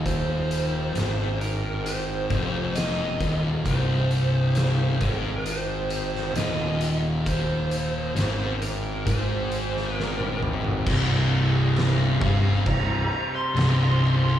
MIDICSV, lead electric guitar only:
0, 0, Header, 1, 2, 480
1, 0, Start_track
1, 0, Key_signature, -3, "minor"
1, 0, Tempo, 900901
1, 28, Time_signature, 4, 2, 24, 8
1, 7668, End_track
2, 0, Start_track
2, 0, Title_t, "Lead electric guitar"
2, 0, Program_c, 0, 29
2, 31, Note_on_c, 0, 72, 102
2, 746, Note_off_c, 0, 72, 0
2, 748, Note_on_c, 0, 70, 86
2, 971, Note_off_c, 0, 70, 0
2, 986, Note_on_c, 0, 72, 93
2, 1466, Note_on_c, 0, 75, 90
2, 1481, Note_off_c, 0, 72, 0
2, 1806, Note_off_c, 0, 75, 0
2, 1955, Note_on_c, 0, 72, 96
2, 2651, Note_off_c, 0, 72, 0
2, 2673, Note_on_c, 0, 70, 80
2, 2894, Note_off_c, 0, 70, 0
2, 2919, Note_on_c, 0, 72, 93
2, 3391, Note_on_c, 0, 75, 87
2, 3408, Note_off_c, 0, 72, 0
2, 3728, Note_off_c, 0, 75, 0
2, 3875, Note_on_c, 0, 72, 96
2, 4571, Note_off_c, 0, 72, 0
2, 4593, Note_on_c, 0, 70, 81
2, 4837, Note_off_c, 0, 70, 0
2, 4839, Note_on_c, 0, 72, 73
2, 5308, Note_off_c, 0, 72, 0
2, 5308, Note_on_c, 0, 70, 73
2, 5532, Note_off_c, 0, 70, 0
2, 6510, Note_on_c, 0, 77, 93
2, 6741, Note_off_c, 0, 77, 0
2, 6754, Note_on_c, 0, 82, 90
2, 6983, Note_off_c, 0, 82, 0
2, 6994, Note_on_c, 0, 82, 80
2, 7106, Note_off_c, 0, 82, 0
2, 7116, Note_on_c, 0, 84, 97
2, 7576, Note_off_c, 0, 84, 0
2, 7588, Note_on_c, 0, 84, 96
2, 7668, Note_off_c, 0, 84, 0
2, 7668, End_track
0, 0, End_of_file